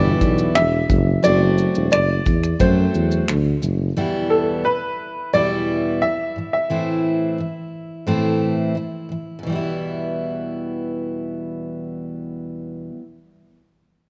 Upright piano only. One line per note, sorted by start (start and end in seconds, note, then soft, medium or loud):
0.00 0.57 D5 medium
0.55 1.20 E5 medium
1.24 1.90 D5 medium
1.92 2.62 D5 medium
2.61 3.25 C5 medium
4.30 4.66 A4 medium
4.65 5.29 B4 medium
5.34 6.04 D5 medium
6.02 6.52 E5 medium
6.53 8.72 E5 medium